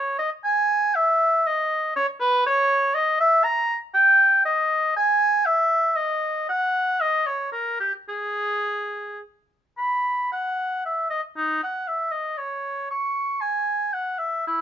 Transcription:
0.00 0.18 C#5 medium
0.19 0.30 D#5 medium
0.45 0.97 G#5 loud
0.95 1.48 E5 loud
1.47 1.95 D#5 medium
1.96 2.07 C#5 loud
2.21 2.45 B4 loud
2.47 2.96 C#5 loud
2.95 3.20 D#5 medium
3.20 3.46 E5 loud
3.44 3.77 A#5 loud
3.94 4.41 G5 loud
4.45 4.95 D#5 medium
4.97 5.47 G#5 loud
5.46 5.98 E5 loud
5.97 6.48 D#5 medium
6.49 7.02 F#5 loud
7.01 7.28 D#5 loud
7.27 7.52 C#5 medium
7.52 7.80 A#4 medium
7.80 7.93 G4 medium
8.09 9.20 G#4 medium
9.78 10.28 B5 medium
10.32 10.84 F#5 medium
10.85 11.10 E5 medium
11.10 11.22 D#5 medium
11.37 11.61 D#4 medium
11.63 11.89 F#5 medium
11.88 12.13 E5 medium
12.12 12.40 D#5 medium
12.38 12.89 C#5 medium
12.91 13.43 C#6 loud
13.41 13.95 G#5 loud
13.94 14.20 F#5 medium
14.18 14.45 E5 medium
14.47 14.61 E4 medium

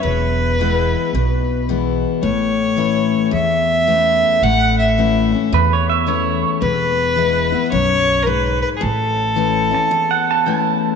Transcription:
0.03 0.93 E1 medium
0.03 1.09 E2 medium
0.03 1.64 B4 medium
0.59 1.11 E3 medium
0.59 1.12 G#3 medium
0.59 1.13 B3 medium
0.59 1.13 E4 medium
1.13 2.03 B1 medium
1.13 2.20 B2 medium
1.69 2.21 E3 medium
1.69 2.22 G#3 medium
1.69 2.22 B3 medium
1.69 2.22 E4 medium
2.23 3.13 A1 medium
2.23 3.29 A2 medium
2.23 3.29 C#5 medium
2.76 3.30 E3 medium
2.76 3.31 A3 medium
2.76 3.31 C#4 medium
2.76 3.31 E4 medium
3.31 4.38 E2 medium
3.31 4.22 E2 medium
3.31 4.45 E5 medium
3.87 4.40 E3 medium
3.87 4.41 A3 medium
3.87 4.41 C#4 medium
3.87 4.41 E4 medium
4.42 5.32 A1 medium
4.42 5.49 A2 medium
4.42 4.78 F#5 loud
4.79 5.49 E5 medium
4.98 5.31 E3 medium
4.98 5.32 A3 medium
4.98 5.32 C#4 medium
4.98 5.31 E4 medium
5.32 5.53 C#4 soft
5.32 5.52 E4 soft
5.52 6.42 E2 medium
5.52 6.58 E2 medium
5.52 5.71 B4 medium
5.73 5.89 C#5 medium
5.90 6.07 E5 medium
6.06 6.60 E3 medium
6.06 6.60 A3 medium
6.06 6.61 C#4 medium
6.06 6.61 E4 medium
6.06 6.51 C#5 medium
6.61 7.52 E1 medium
6.61 7.68 E2 medium
6.61 7.68 B4 loud
7.16 7.50 E3 medium
7.16 7.51 G#3 medium
7.16 7.51 B3 medium
7.16 7.51 E4 medium
7.52 7.73 B3 soft
7.52 7.72 E4 medium
7.72 8.62 B1 medium
7.72 8.25 F#2 medium
7.72 8.24 C#5 loud
8.23 8.28 A#4 medium
8.27 8.80 G#2 medium
8.27 8.61 B4 medium
8.62 8.69 B4 medium
8.77 9.87 A2 medium
8.77 8.82 G#4 medium
8.81 9.72 A1 medium
8.81 10.46 A4 medium
9.36 9.70 E3 medium
9.36 9.70 A3 medium
9.36 9.71 C#4 medium
9.36 9.70 E4 medium
9.71 9.91 C#4 soft
9.71 9.91 E4 medium
9.71 10.10 A5 medium
9.91 10.96 E2 medium
10.11 10.28 F#5 medium
10.31 10.45 A5 medium
10.46 10.96 E3 medium
10.46 10.96 A3 medium
10.46 10.96 C#4 medium
10.46 10.96 E4 medium
10.46 10.90 A5 medium

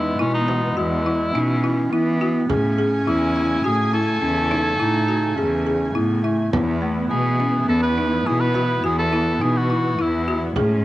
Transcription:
0.00 2.46 E3 medium
0.00 1.35 G#3 medium
0.00 2.46 B3 medium
0.00 0.13 D#4 medium
0.00 0.19 E4 loud
0.19 0.67 B2 medium
0.19 0.33 C#4 loud
0.19 0.42 E4 medium
0.34 0.74 D#4 medium
0.48 0.71 F#4 medium
0.48 frame drum medium
0.77 1.25 E2 loud
0.77 1.88 E4 medium
0.77 1.00 F#4 medium
1.06 1.29 E4 medium
1.33 1.82 B2 medium
1.33 1.93 C#4 loud
1.33 1.58 D#4 medium
1.64 1.87 E4 medium
1.92 2.40 E3 medium
1.92 2.51 B3 loud
1.92 2.15 E4 medium
2.21 2.44 F#4 medium
2.49 2.98 A2 loud
2.49 6.50 C#3 medium
2.49 6.49 A3 medium
2.49 4.53 C#4 loud
2.49 2.73 G#4 medium
2.49 6.50 G#5 medium
2.49 frame drum medium
2.78 3.01 G#4 medium
2.78 frame drum soft
3.07 3.55 E2 medium
3.07 3.30 E4 medium
3.07 3.61 E4 medium
3.36 3.59 E4 medium
3.64 4.13 A2 loud
3.64 3.87 F#4 medium
3.64 3.92 G#4 loud
3.64 frame drum soft
3.93 4.16 E4 medium
3.93 5.91 A4 loud
3.93 frame drum soft
4.22 4.70 E2 medium
4.22 4.45 C#4 medium
4.22 frame drum soft
4.51 4.74 D#4 medium
4.51 frame drum medium
4.79 5.28 A2 medium
4.79 5.38 D#4 loud
4.79 5.03 E4 medium
4.79 frame drum soft
5.08 5.32 F#4 medium
5.36 5.86 E2 medium
5.36 5.97 C#4 medium
5.36 5.61 G#4 medium
5.66 5.89 G#4 medium
5.95 6.43 A2 medium
5.95 6.25 B3 medium
5.95 6.18 E4 medium
5.95 frame drum soft
6.23 6.51 A3 medium
6.23 6.47 E4 medium
6.52 7.01 E2 loud
6.52 10.52 E3 medium
6.52 10.25 B3 medium
6.52 10.52 B3 medium
6.52 6.76 B3 medium
6.52 10.52 E4 medium
6.52 frame drum medium
6.82 7.05 A3 medium
7.10 7.59 B2 loud
7.10 7.34 B3 medium
7.10 7.64 G#4 loud
7.10 frame drum soft
7.40 7.62 C#4 medium
7.68 8.16 E2 medium
7.68 7.92 B3 medium
7.68 7.82 A4 loud
7.83 8.28 B4 loud
7.98 8.20 D#4 medium
8.26 8.74 B2 medium
8.26 8.49 E4 medium
8.26 8.42 G#4 loud
8.40 8.83 B4 loud
8.54 8.78 F#4 medium
8.54 frame drum medium
8.84 9.32 E2 loud
8.84 9.07 F#4 medium
8.84 8.97 G#4 medium
8.99 9.43 A4 loud
9.13 9.35 E4 medium
9.41 9.89 B2 medium
9.41 9.64 D#4 medium
9.41 9.59 G#4 medium
9.57 10.03 F#4 loud
9.70 9.93 E4 medium
9.99 10.47 E2 medium
9.99 10.22 E4 medium
9.99 10.43 E4 medium
10.28 10.51 F#4 medium
10.56 10.85 A2 loud
10.56 10.85 A2 medium
10.56 10.85 G#3 medium
10.56 10.85 C#4 loud
10.56 10.79 G#4 loud
10.56 frame drum medium

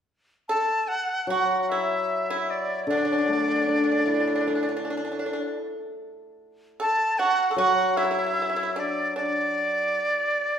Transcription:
0.48 1.26 A4 medium
0.48 0.89 A5 medium
0.88 1.28 F#5 medium
1.27 3.66 F#3 medium
1.27 1.67 F#4 medium
1.27 1.60 F#5 medium
1.62 1.71 F#5 medium
1.69 2.26 E4 medium
1.69 2.52 E5 medium
2.30 2.85 E4 medium
2.50 2.88 D5 medium
2.87 5.23 D3 medium
2.87 2.96 D4 medium
2.87 5.58 D5 medium
2.97 3.03 D4 soft
3.05 3.11 D4 soft
3.12 3.17 D4 soft
3.18 3.24 D4 soft
3.26 4.85 A3 soft
3.26 3.32 D4 soft
3.33 3.39 D4 soft
3.40 3.47 D4 soft
3.48 3.54 D4 soft
3.56 3.60 D4 soft
3.62 3.68 D4 soft
3.67 5.23 D4 soft
3.67 3.75 D4 soft
3.76 3.83 D4 soft
3.84 3.90 D4 soft
3.92 3.97 D4 soft
3.99 4.04 D4 soft
4.06 4.12 D4 soft
4.06 5.62 E4 soft
4.14 4.19 D4 soft
4.21 4.26 D4 soft
4.27 4.34 D4 soft
4.35 4.39 D4 soft
4.41 4.46 D4 soft
4.47 4.54 D4 soft
4.47 6.02 A4 soft
4.55 4.61 D4 soft
4.63 4.68 D4 soft
4.69 4.75 D4 soft
4.77 4.84 D4 soft
4.85 4.89 D4 soft
4.90 4.96 D4 soft
4.97 5.04 D4 soft
5.05 5.10 D4 soft
5.12 5.18 D4 soft
5.19 5.25 D4 soft
5.26 5.32 D4 soft
5.33 5.40 D4 soft
6.80 7.17 A4 medium
6.80 7.20 A5 medium
7.18 7.50 F#4 medium
7.18 7.58 F#5 medium
7.51 7.58 A4 medium
7.56 9.94 F#3 medium
7.56 7.95 F#4 medium
7.56 7.98 F#5 medium
7.97 8.03 E4 medium
7.97 8.76 E5 medium
8.04 8.10 E4 soft
8.11 8.17 E4 soft
8.18 8.25 E4 soft
8.26 8.32 E4 soft
8.33 8.41 E4 soft
8.42 8.48 E4 medium
8.49 8.55 E4 soft
8.56 8.62 E4 medium
8.63 8.70 E4 soft
8.76 9.13 D4 medium
8.76 9.14 D5 medium
9.16 10.59 D4 medium
9.16 10.59 D5 medium

